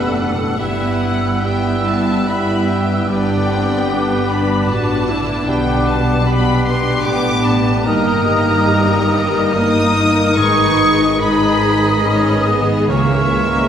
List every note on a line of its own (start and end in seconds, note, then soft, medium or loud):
0.00 0.58 F#1 soft
0.00 0.62 E2 soft
0.00 0.58 F#2 soft
0.00 0.29 B2 soft
0.00 0.55 G3 soft
0.00 0.58 A3 medium
0.00 0.54 B3 medium
0.00 1.15 B3 soft
0.00 3.05 B3 soft
0.00 0.58 D4 soft
0.00 1.42 E4 soft
0.00 0.54 G4 soft
0.00 0.54 B4 medium
0.00 0.57 B4 medium
0.00 1.71 B4 soft
0.00 0.15 E5 soft
0.00 0.59 F#5 medium
0.00 0.55 E6 medium
0.15 1.42 F#5 soft
0.31 0.62 B2 soft
0.57 3.06 G1 medium
0.57 3.08 G2 medium
0.57 3.05 G2 medium
0.57 1.41 G3 soft
0.57 1.41 B3 soft
0.57 1.42 B3 soft
0.57 3.05 E4 soft
0.57 1.42 E4 medium
0.57 2.24 G4 soft
0.57 1.42 B4 medium
0.57 1.01 E5 medium
0.57 1.42 E6 medium
0.87 2.81 G3 soft
1.02 1.43 F#5 medium
1.16 3.62 B3 soft
1.42 2.26 G3 soft
1.42 2.25 B3 medium
1.42 2.26 B3 soft
1.42 3.06 E4 soft
1.42 1.98 E4 soft
1.42 2.27 B4 soft
1.42 3.06 E5 soft
1.42 1.85 G5 medium
1.42 2.26 E6 soft
1.86 2.27 A5 medium
1.99 2.54 E4 soft
2.27 3.09 G3 soft
2.27 3.08 G3 medium
2.27 3.08 B3 medium
2.27 3.07 G4 soft
2.27 4.14 B4 soft
2.27 3.08 B4 soft
2.27 2.69 B5 medium
2.27 3.08 E6 medium
2.55 3.12 E4 soft
2.69 3.08 G5 medium
2.82 5.72 G3 soft
3.08 4.66 G1 medium
3.08 5.50 G2 soft
3.08 4.66 G2 medium
3.08 5.17 G3 medium
3.08 7.69 B3 medium
3.08 5.16 B3 medium
3.08 3.49 B3 soft
3.08 7.69 D4 soft
3.08 3.90 D4 soft
3.08 3.89 B4 soft
3.08 5.17 B4 medium
3.08 3.89 D5 soft
3.08 4.27 G5 medium
3.08 5.21 D6 medium
3.35 5.19 D3 soft
3.50 3.90 C4 soft
3.63 5.98 B3 soft
3.89 4.41 D4 soft
3.89 4.29 D4 soft
3.89 4.68 G4 soft
3.89 4.67 B4 medium
4.30 5.45 D4 medium
4.30 4.69 B5 medium
4.42 4.93 D4 soft
4.68 5.47 A1 medium
4.68 5.47 A2 medium
4.68 5.08 F#4 medium
4.68 6.51 B4 soft
4.68 5.46 B4 soft
4.68 5.48 A5 medium
4.94 6.24 D4 soft
5.08 5.47 E4 medium
5.20 5.50 D3 soft
5.46 7.03 B1 medium
5.46 7.90 B2 medium
5.46 7.02 B2 medium
5.46 6.23 G3 medium
5.46 6.22 B3 medium
5.46 6.25 D4 medium
5.46 6.23 B4 medium
5.46 7.84 B4 medium
5.46 5.87 G5 medium
5.46 6.26 D6 medium
5.73 7.57 G3 soft
5.86 6.26 A5 medium
6.00 7.90 B3 soft
6.24 7.04 G3 medium
6.24 7.03 B3 medium
6.24 6.76 D4 soft
6.24 7.83 D4 medium
6.24 7.84 G4 medium
6.24 7.04 B4 medium
6.24 6.66 B5 medium
6.24 7.03 D6 medium
6.65 7.04 C6 medium
6.78 7.30 D4 soft
7.04 7.85 A1 medium
7.04 7.85 A2 medium
7.04 7.88 G3 medium
7.04 7.88 B3 medium
7.04 7.87 B3 medium
7.04 7.89 B4 soft
7.04 7.85 B4 medium
7.04 7.46 D6 medium
7.04 7.85 D6 medium
7.32 7.90 D4 soft
7.45 7.86 A5 medium
7.58 8.11 G3 soft
7.86 10.38 G1 medium
7.86 10.41 G2 medium
7.86 10.38 G2 medium
7.86 9.52 D#3 medium
7.86 10.34 A#3 medium
7.86 8.66 A#3 medium
7.86 9.54 D#4 medium
7.86 12.86 D#4 medium
7.86 8.27 D#4 medium
7.86 8.65 G4 medium
7.86 9.50 A#4 medium
7.86 11.15 D#5 medium
7.86 9.53 A#5 medium
7.86 9.50 D#6 medium
8.12 10.08 G3 soft
8.26 9.54 G4 medium
8.67 9.07 G3 medium
8.67 9.80 D#4 soft
8.67 9.52 A#4 medium
8.94 9.52 D#5 soft
9.09 9.53 G3 medium
9.52 10.36 D#3 medium
9.52 10.37 A#3 medium
9.52 10.37 D#4 medium
9.52 10.36 D#4 medium
9.52 10.36 A#4 medium
9.52 10.39 A#4 medium
9.52 11.45 D#5 soft
9.52 10.36 D#6 medium
9.52 10.38 D#6 loud
9.81 11.18 D#4 soft
10.09 10.41 G3 soft
10.36 12.90 G#1 medium
10.36 12.92 G#2 medium
10.36 12.90 G#2 medium
10.36 11.18 D#3 medium
10.36 12.85 G#3 medium
10.36 10.76 G#3 medium
10.36 11.03 D#4 medium
10.36 11.18 D#4 medium
10.36 11.03 G#4 medium
10.36 11.17 B4 medium
10.36 11.20 C#6 loud
10.36 11.18 D#6 medium
10.65 12.60 D#3 soft
10.77 12.01 G#3 medium
10.92 12.93 G#3 soft
11.18 12.58 D#3 medium
11.18 12.31 D#4 medium
11.18 12.58 D#4 medium
11.18 12.02 G#4 medium
11.18 12.58 G#4 medium
11.18 12.02 B4 medium
11.18 12.85 D#5 medium
11.18 12.45 B5 medium
11.18 12.62 D#6 medium
11.47 12.03 D#5 soft
11.76 12.93 G#4 medium
12.03 12.46 C#4 medium
12.03 13.68 G#4 medium
12.03 12.88 B4 medium
12.03 12.93 D#5 soft
12.32 12.93 D#4 soft
12.47 12.90 B3 medium
12.61 12.93 D#3 soft
12.89 13.68 C#2 medium
12.89 13.68 C#3 medium
12.89 13.68 E3 medium
12.89 13.68 A#3 medium
12.89 13.33 A#3 medium
12.89 13.68 E4 medium
12.89 13.68 A#4 medium
12.89 13.68 C#5 medium
12.89 13.68 E5 medium
12.89 13.68 C#6 medium
13.18 13.68 C#4 soft
13.34 13.68 G#3 medium
13.47 13.68 A#3 soft